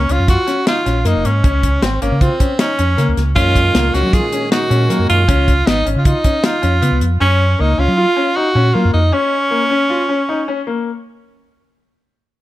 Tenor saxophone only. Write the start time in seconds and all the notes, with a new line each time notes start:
Already playing: C#4
0.11 F4
0.29 F#4
0.68 F4
1.07 D#4
1.25 C#4
1.84 C4
2.02 A#3
2.21 C4
2.60 C#4
3.36 F4
3.94 F#4
4.13 G#4
4.52 F#4
5.09 F4
5.66 D#4
5.98 F4
6.07 D#4
6.45 F4
7.21 C#4
7.60 D#4
7.79 F4
8.36 F#4
8.74 F4
8.93 D#4
9.13 C#4